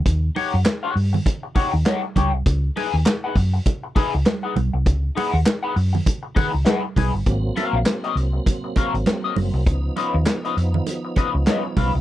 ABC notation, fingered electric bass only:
X:1
M:4/4
L:1/16
Q:"Swing 16ths" 1/4=100
K:Dblyd
V:1 name="Fingered electric bass" clef=bass
E,,2 z ^F,, z2 G,,2 z3 E,, z2 D,, C,, | D,,2 z E,, z2 _G,,2 z3 D,, z2 _C,, =C,, | D,,2 z E,, z2 _G,,2 z3 D,, z2 _C,, =G,,, | A,,,2 z B,,, z2 C,,2 z3 A,,, z2 _G,,, C,, |
D,,2 z E,, z2 F,,2 z3 D,, z2 _C,, =C,, |]